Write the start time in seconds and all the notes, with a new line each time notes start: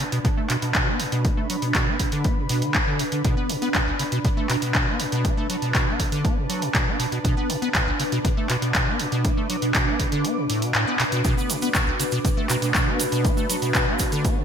Already playing: D4 B4
0.03 B5
0.12 B2, closed hi-hat
0.25 B2, kick, closed hi-hat
0.37 A3
0.50 B2, clap, open hi-hat
0.62 B2, closed hi-hat
0.75 B2, kick, clap, closed hi-hat
0.87 B3
1.00 A2, open hi-hat
1.12 B2, closed hi-hat
1.25 B3, kick, closed hi-hat
1.37 A3
1.50 F#3, open hi-hat
1.62 B2, closed hi-hat
1.75 B2, kick, clap, closed hi-hat
1.87 B3
2.00 A2, kick, open hi-hat
2.12 D3, closed hi-hat
2.24 B3, kick, closed hi-hat
2.37 B2
2.49 B2, open hi-hat
2.62 D3, closed hi-hat
2.74 B2, kick, clap, closed hi-hat
2.87 D3
2.99 B2, open hi-hat
3.12 D3, closed hi-hat
3.24 B2, kick, closed hi-hat
3.37 B3
3.49 B2, open hi-hat
3.62 B3, closed hi-hat
3.74 B2, kick, clap, closed hi-hat
3.87 B1
3.99 C#3 A5, open hi-hat
4.12 B2, closed hi-hat
4.25 B2, kick, closed hi-hat
4.37 A3
4.49 B2, clap, open hi-hat
4.62 B2, closed hi-hat
4.75 B2, kick, clap, closed hi-hat
4.87 B3
5.00 A2, open hi-hat
5.12 B2, closed hi-hat
5.25 B3, kick, closed hi-hat
5.37 A3
5.50 F#3, open hi-hat
5.62 B2, closed hi-hat
5.75 B2, kick, clap, closed hi-hat
5.87 B3
6.00 A2, kick, open hi-hat
6.12 D3, closed hi-hat
6.24 B3, kick, closed hi-hat
6.37 B2
6.49 F#3, open hi-hat
6.62 B2, closed hi-hat
6.74 B2, kick, clap, closed hi-hat
6.87 B3
6.99 B2, open hi-hat
7.12 B2, closed hi-hat
7.24 B2, kick, closed hi-hat
7.37 B3
7.49 B2, open hi-hat
7.62 B3, closed hi-hat
7.74 B2, kick, clap, closed hi-hat
7.87 B1
7.99 C#3 D6, open hi-hat
8.12 B2, closed hi-hat
8.25 B2, kick, closed hi-hat
8.37 A3
8.50 B2, clap, open hi-hat
8.62 B2, closed hi-hat
8.75 B2, kick, clap, closed hi-hat
8.87 B3
8.99 A2, open hi-hat
9.12 B2, closed hi-hat
9.25 B3, kick, closed hi-hat
9.37 A3
9.50 F#3, open hi-hat
9.62 B2, closed hi-hat
9.75 B2, kick, clap, closed hi-hat
9.87 B3
10.00 A2, kick, open hi-hat
10.12 D3, closed hi-hat
10.25 B3, closed hi-hat
10.37 B2
10.50 A2, open hi-hat
10.62 B2, closed hi-hat
10.75 A2, clap, closed hi-hat
10.87 B3
11.00 B2, clap, open hi-hat
11.12 B2, closed hi-hat
11.25 B2 A3 D4 F#4 B4, kick, closed hi-hat, shaker
11.37 B3, shaker
11.50 B2, open hi-hat, shaker
11.62 B3, closed hi-hat, shaker
11.74 B2, kick, clap, closed hi-hat, shaker
11.87 B1
12.00 C#3 A5, open hi-hat, shaker
12.12 B2, closed hi-hat, shaker
12.25 B2, kick, closed hi-hat, shaker
12.37 A3
12.50 B2, clap, open hi-hat, shaker
12.62 B2, closed hi-hat, shaker
12.74 B2, kick, clap, closed hi-hat, shaker
12.87 B3
13.00 A2, open hi-hat, shaker
13.12 B2, closed hi-hat, shaker
13.25 B3, kick, closed hi-hat, shaker
13.37 A3, shaker
13.50 F#3, open hi-hat, shaker
13.62 B2, closed hi-hat, shaker
13.75 B2, kick, clap, closed hi-hat, shaker
13.87 B3
13.99 A2, kick, open hi-hat, shaker
14.12 D3, closed hi-hat, shaker
14.25 B3, kick, closed hi-hat, shaker
14.37 B2